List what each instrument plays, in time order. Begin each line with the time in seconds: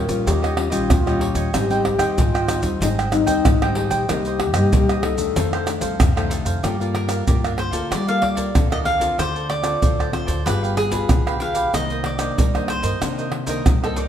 Already playing: nylon-string guitar A#2, cavaquinho G4 C#5 D#5, alto flute A#4
0.08 upright bass A#1, nylon-string guitar G3 C#4 F4, pandeiro, maracas, surdo
0.26 upright bass D#2, nylon-string guitar D#3, cavaquinho D#4 G4 C#5 D#5, alto flute G4, pandeiro, maracas, surdo
0.42 cavaquinho G4 C#5 D#5, pandeiro, tamborim, maracas
0.56 nylon-string guitar G3 C#4 F4, muted cavaquinho stroke, pandeiro, tamborim
0.70 upright bass A#1, nylon-string guitar G3 C#4 F4, cavaquinho G4 C#5 D#5, pandeiro, maracas, surdo
0.90 upright bass D#2, nylon-string guitar A#2, alto flute F4, pandeiro, tamborim, maracas, surdo
1.06 nylon-string guitar G3 C#4 F4, cavaquinho G4 C#5 D#5, pandeiro, tamborim, maracas
1.20 cavaquinho D#4 G4 C#5 D#5, pandeiro
1.34 upright bass D#2, cavaquinho G4 C#5 D#5, pandeiro, maracas, surdo
1.54 upright bass G#1, nylon-string guitar G#2 G3 C4 D#4, alto flute G4, cavaquinho G#4 C5 D#5 G5, pandeiro, tamborim, maracas, surdo
1.70 nylon-string guitar G3 C4 D#4, cavaquinho C5 D#5 G5, pandeiro, maracas
1.85 muted cavaquinho stroke, pandeiro, tamborim, surdo
1.98 upright bass D#2, nylon-string guitar G3 C4 D#4, cavaquinho C5 D#5 G5, pandeiro, tamborim, maracas
2.18 upright bass G#1, nylon-string guitar D#3, alto flute F4, cavaquinho G#4 C5 D#5 G5, pandeiro, maracas, surdo
2.34 cavaquinho C5 D#5 G5, pandeiro, tamborim, maracas
2.48 nylon-string guitar G3 C4 D#4, pandeiro, tamborim, maracas
2.63 upright bass D#2, nylon-string guitar G3 C4 D#4, pandeiro, maracas, surdo
2.81 upright bass G#1, nylon-string guitar G#2, alto flute D#4, cavaquinho G#4 C5 D#5 G5, pandeiro, maracas, surdo
2.98 cavaquinho C5 D#5 G5, pandeiro, tamborim, maracas
3.11 nylon-string guitar G3 C4 D#4, alto flute D#4, muted cavaquinho stroke, pandeiro, tamborim, maracas
3.26 upright bass D#2, nylon-string guitar G3 C4 D#4, cavaquinho C5 D#5 G5, pandeiro, maracas, surdo
3.45 upright bass G#1, nylon-string guitar D#3, pandeiro, tamborim, maracas, surdo
3.62 nylon-string guitar G3 C4 D#4, cavaquinho C5 D#5 G5, pandeiro, tamborim, maracas
3.75 alto flute G4, cavaquinho G#4 C5 D#5 G5, pandeiro
3.90 upright bass A#1, cavaquinho C5 D#5 G5, pandeiro, maracas, surdo
4.09 upright bass C2, nylon-string guitar C3 G3 A#3 D#4, alto flute G4, cavaquinho A#4 C5 D#5, pandeiro, tamborim, maracas, surdo
4.25 cavaquinho C5 D#5, pandeiro, maracas
4.40 muted cavaquinho stroke, pandeiro, tamborim, surdo
4.54 upright bass G2, nylon-string guitar G3 A#3 D#4, cavaquinho C5 D#5, pandeiro, tamborim, maracas
4.73 nylon-string guitar G2, cavaquinho A#4 C5 D#5, pandeiro, maracas, surdo
4.89 cavaquinho C5 D#5, pandeiro, tamborim, maracas
5.03 nylon-string guitar G3 A#3 D#4, alto flute A4, pandeiro, tamborim
5.17 upright bass D#2, nylon-string guitar D#3 A3 D4, pandeiro, maracas, surdo
5.36 upright bass F2, nylon-string guitar F2, cavaquinho D#4 A4 C5 F5, pandeiro, maracas, surdo
5.53 cavaquinho A4 C5 F5, pandeiro, tamborim, maracas
5.67 nylon-string guitar D#3 A3 D4, muted cavaquinho stroke, pandeiro, tamborim, maracas
5.81 upright bass C2, cavaquinho A4 C5 F5, pandeiro, maracas, surdo
6.00 upright bass F2, nylon-string guitar C3, pandeiro, tamborim, maracas, surdo
6.16 nylon-string guitar D#3 A3 D4, cavaquinho A4 C5 F5, pandeiro, tamborim, maracas
6.29 cavaquinho D#4 A4 C5 F5, pandeiro, maracas
6.45 upright bass F2, cavaquinho A4 C5 F5, pandeiro, maracas, surdo
6.63 upright bass G2, nylon-string guitar G3 A#3 F4 A4, cavaquinho G4 A#4 D5 F5, pandeiro, tamborim, maracas, surdo
6.80 nylon-string guitar A#3 F4 A4, cavaquinho A#4 D5 F5, pandeiro, maracas
6.95 cavaquinho A#4, pandeiro, tamborim
7.08 cavaquinho A#4 D5 F5, pandeiro, tamborim, maracas
7.27 upright bass G2, nylon-string guitar D3 A#3 F4, cavaquinho G4 A#4 D5 F5, pandeiro, maracas, surdo
7.44 cavaquinho A#4 D5 F5, pandeiro, tamborim, maracas, surdo
7.58 cavaquinho C5, muted cavaquinho stroke, pandeiro, tamborim
7.71 upright bass D2, nylon-string guitar A#3 F4 A4, cavaquinho A#4 D5 F5, pandeiro, maracas, surdo
7.90 upright bass G3, nylon-string guitar G3, cavaquinho G4 A#4 D5 F5, pandeiro, tamborim, maracas, surdo
8.07 nylon-string guitar A#3 F4 A4, cavaquinho A#4 D5 F5, pandeiro, maracas
8.22 cavaquinho D5, pandeiro, tamborim, surdo
8.35 cavaquinho A#4 D5 F5, pandeiro, maracas, surdo
8.55 upright bass D#2, nylon-string guitar D3 A#3 F4 A4, pandeiro, tamborim, maracas, surdo
8.70 cavaquinho A#4 D5 D#5 F5, pandeiro, tamborim, maracas
8.84 cavaquinho G4 A#4 D5 F5, pandeiro
8.98 nylon-string guitar C4 F4 A4, cavaquinho A#4 D5 F5, pandeiro, maracas, surdo
9.18 upright bass D2, nylon-string guitar D3, cavaquinho F4 A4 C5 D5, pandeiro, tamborim, maracas, surdo
9.35 cavaquinho A4 C5 D5, pandeiro, maracas
9.50 cavaquinho D5, pandeiro, tamborim
9.63 nylon-string guitar C4 F4 A4, cavaquinho A4 C5 D5, pandeiro, tamborim, maracas
9.82 upright bass D2, nylon-string guitar A2, cavaquinho F4 A4 C5 D5, pandeiro, maracas, surdo
9.99 cavaquinho A4 C5 D5, pandeiro, tamborim, maracas, surdo
10.12 nylon-string guitar C4 F4 A4, cavaquinho C5, muted cavaquinho stroke, pandeiro, tamborim
10.26 upright bass D2, cavaquinho A4 C5 D5, pandeiro, maracas, surdo
10.45 upright bass G1, nylon-string guitar G3 B3 F4 G#4, cavaquinho D4 G4 B4 F5, pandeiro, tamborim, maracas, surdo
10.63 cavaquinho G4 B4 F5, pandeiro, maracas
10.76 cavaquinho G#4, muted cavaquinho stroke, pandeiro, tamborim
10.90 nylon-string guitar B3 F4 G#4, cavaquinho B4 F5, pandeiro, maracas, surdo
11.09 upright bass B1, nylon-string guitar D3, pandeiro, tamborim, maracas, surdo
11.27 cavaquinho G4 B4 F5, pandeiro, tamborim, maracas
11.40 nylon-string guitar B3 F4 G#4, cavaquinho D4 G4 B4 F5, pandeiro
11.54 cavaquinho G4 B4 F5, pandeiro, maracas, surdo
11.73 upright bass C2, nylon-string guitar C3 D#3 A#3, cavaquinho D#4 A#4 C5 D#5, pandeiro, tamborim, maracas, surdo
11.90 cavaquinho A#4 C5 D#5, pandeiro, maracas
12.04 cavaquinho D5, pandeiro, tamborim
12.19 nylon-string guitar D#3 A#3 D4, cavaquinho A#4 C5 D#5, pandeiro, tamborim, maracas
12.38 upright bass C2, nylon-string guitar G2, cavaquinho D#4 A#4 C5 D#5, pandeiro, maracas, surdo
12.54 nylon-string guitar D#3 A#3 D4, cavaquinho A#4 C5 D#5, pandeiro, tamborim, maracas, surdo
12.68 cavaquinho C5, muted cavaquinho stroke, pandeiro, tamborim
12.82 upright bass G2, cavaquinho A#4 C5 D#5, pandeiro, maracas, surdo
13.01 nylon-string guitar C3 D#3 A#3 D4, upright bass C3, cavaquinho D#4 A#4 C5 D#5, pandeiro, tamborim, maracas, surdo
13.18 cavaquinho A#4 C5 D#5, pandeiro, maracas
13.32 muted cavaquinho stroke, pandeiro, tamborim
13.46 nylon-string guitar D#3 A#3 D4, cavaquinho A#4 C5 D#5, pandeiro, maracas, surdo
13.66 upright bass C2, nylon-string guitar G2, pandeiro, tamborim, maracas, surdo
13.82 nylon-string guitar D#3 A#3 D4, cavaquinho A4 A#4 C5 D#5, pandeiro, tamborim, maracas
13.96 cavaquinho D#4 A#4 C5 D5 D#5, pandeiro, maracas